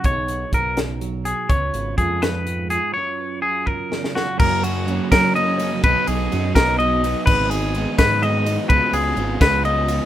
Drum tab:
CC |------------|------------|------------|x-----------|
RD |------------|------------|------------|--x-x-x-x-x-|
HH |x-x-x-x-x-x-|x-x-x-x-x-x-|------------|------------|
SD |------o-----|------o-----|--------ooo-|------o-----|
BD |o---o-------|o---o-------|------o-----|o-----o-----|

CC |------------|x-----------|------------|
RD |x-x-x-x-x-x-|--x-x-x-x-x-|x-x-x-x-x-x-|
HH |------------|------------|------------|
SD |------o-----|------o-----|------o-----|
BD |o-----o-----|o-----o-----|o-----o-----|